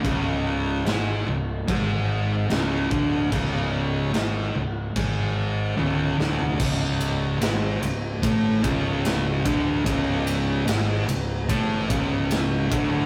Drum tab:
CC |x---x---x---x---|x---x---x-------|x---------------|----------------|
RD |----------------|----------------|--x-x-x-x-x-x-x-|x-x-x-x-x-x-x-x-|
SD |----o-------o---|----o---------o-|----o-------o---|----o-------o---|
T1 |----------------|------------o---|----------------|----------------|
FT |----------------|---------------o|----------------|----------------|
BD |o-------o-----o-|o-------o-------|o-------o-o---o-|o-------o-o---o-|